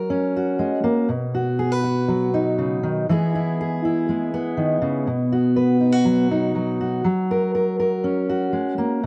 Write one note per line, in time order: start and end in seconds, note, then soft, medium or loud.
0.00 0.59 F#3 medium
0.00 1.07 A#4 medium
0.10 1.07 C#4 soft
0.37 1.08 F#4 soft
0.59 0.83 G#3 soft
0.84 1.09 A#3 soft
1.09 3.05 B2 medium
1.34 1.83 F#4 soft
1.59 1.72 G#4 medium
1.72 3.08 B4 soft
1.84 3.05 F#4 soft
2.08 3.08 F#3 soft
2.34 3.06 D#4 soft
2.58 2.83 C#3 soft
2.83 3.08 D#3 medium
3.09 4.57 E3 medium
3.09 4.08 G#3 soft
3.09 4.33 B3 soft
3.09 3.34 E4 soft
3.09 3.60 G#4 medium
3.35 3.84 E4 soft
3.61 5.08 G#4 medium
3.85 5.05 E4 soft
4.09 5.04 G#3 soft
4.34 6.31 B3 soft
4.57 4.81 D#3 soft
4.82 5.07 C#3 medium
5.07 7.02 B2 medium
5.32 5.80 F#4 soft
5.56 7.02 B4 soft
5.80 5.92 D#4 soft
5.92 6.79 F#4 soft
6.05 6.54 F#3 soft
6.31 7.02 D#4 soft
6.55 7.04 F#3 soft
6.81 8.29 F#4 soft
7.04 8.52 F#3 medium
7.31 7.53 A#4 medium
7.55 7.78 A#4 soft
7.80 9.00 A#4 soft
8.04 9.00 C#4 medium
8.29 9.00 F#4 soft
8.53 8.77 G#3 soft
8.78 9.03 A#3 soft